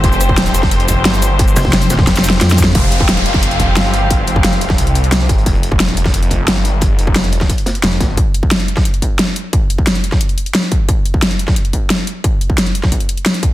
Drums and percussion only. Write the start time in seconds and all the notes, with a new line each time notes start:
0.04 kick, closed hi-hat
0.12 closed hi-hat, shaker
0.21 cross-stick, closed hi-hat, shaker
0.29 kick
0.38 snare, closed hi-hat
0.46 snare, closed hi-hat, shaker
0.55 cross-stick, closed hi-hat, shaker
0.63 kick, snare, closed hi-hat
0.71 closed hi-hat
0.80 closed hi-hat
0.88 kick, closed hi-hat, shaker
1.05 snare, closed hi-hat
1.14 shaker
1.22 snare, closed hi-hat, shaker
1.39 kick, closed hi-hat
1.48 shaker
1.56 cross-stick, snare, closed hi-hat, shaker
1.60 snare, closed hi-hat
1.65 kick, snare, closed hi-hat
1.69 snare, closed hi-hat
1.73 snare, closed hi-hat
1.82 closed hi-hat, shaker
1.90 cross-stick, snare, closed hi-hat, shaker
1.98 kick, snare
2.07 kick, snare, closed hi-hat
2.16 snare, closed hi-hat, shaker
2.24 closed hi-hat, shaker
2.30 snare, closed hi-hat
2.41 snare, closed hi-hat
2.49 snare, closed hi-hat, shaker
2.58 kick, snare, closed hi-hat, shaker
2.64 snare, closed hi-hat
2.75 kick, closed hi-hat
2.84 closed hi-hat
2.92 closed hi-hat
3.00 kick
3.09 snare, closed hi-hat
3.17 snare, closed hi-hat
3.26 closed hi-hat
3.34 kick, snare, closed hi-hat
3.42 closed hi-hat
3.51 closed hi-hat
3.59 kick, closed hi-hat
3.77 snare, closed hi-hat
3.94 snare, closed hi-hat
4.10 kick, closed hi-hat
4.27 closed hi-hat
4.36 kick
4.44 snare, closed hi-hat
4.53 closed hi-hat
4.61 closed hi-hat
4.70 kick, snare
4.78 closed hi-hat
4.87 closed hi-hat
4.95 closed hi-hat
5.04 closed hi-hat
5.11 snare, closed hi-hat
5.21 closed hi-hat
5.29 kick, snare, closed hi-hat
5.38 closed hi-hat
5.46 kick, closed hi-hat
5.55 closed hi-hat
5.63 closed hi-hat
5.72 kick
5.80 snare, closed hi-hat
5.89 snare, closed hi-hat
5.97 closed hi-hat
6.06 kick, snare, closed hi-hat
6.14 closed hi-hat
6.23 closed hi-hat
6.31 kick, closed hi-hat
6.48 snare, closed hi-hat
6.65 snare, closed hi-hat
6.81 kick, closed hi-hat
6.99 closed hi-hat
7.07 kick
7.15 snare, closed hi-hat
7.24 closed hi-hat
7.32 closed hi-hat
7.41 kick, snare
7.49 kick, closed hi-hat
7.58 closed hi-hat
7.66 snare, closed hi-hat
7.75 closed hi-hat
7.83 snare, closed hi-hat
7.93 closed hi-hat
8.00 kick, snare, closed hi-hat
8.09 snare
8.17 kick, closed hi-hat
8.34 closed hi-hat
8.43 kick
8.51 snare, closed hi-hat
8.60 closed hi-hat
8.68 closed hi-hat
8.77 kick, snare
8.85 closed hi-hat
8.94 closed hi-hat
9.02 kick, closed hi-hat
9.19 snare, closed hi-hat
9.36 closed hi-hat
9.53 kick, closed hi-hat
9.70 closed hi-hat
9.78 kick
9.87 snare, closed hi-hat
9.96 closed hi-hat
10.04 closed hi-hat
10.12 kick, snare
10.21 closed hi-hat
10.29 closed hi-hat
10.38 closed hi-hat
10.46 closed hi-hat
10.55 snare, closed hi-hat
10.72 kick, closed hi-hat
10.89 kick, closed hi-hat
11.05 closed hi-hat
11.14 kick
11.22 snare, closed hi-hat
11.31 closed hi-hat
11.39 closed hi-hat
11.48 kick, snare
11.56 closed hi-hat
11.65 closed hi-hat
11.73 kick, closed hi-hat
11.90 snare, closed hi-hat
12.07 closed hi-hat
12.24 kick, closed hi-hat
12.41 closed hi-hat
12.50 kick
12.58 snare, closed hi-hat
12.67 closed hi-hat
12.75 closed hi-hat
12.83 kick, snare
12.92 kick, closed hi-hat
13.00 closed hi-hat
13.09 closed hi-hat
13.17 closed hi-hat
13.26 snare, closed hi-hat
13.34 closed hi-hat
13.43 kick, closed hi-hat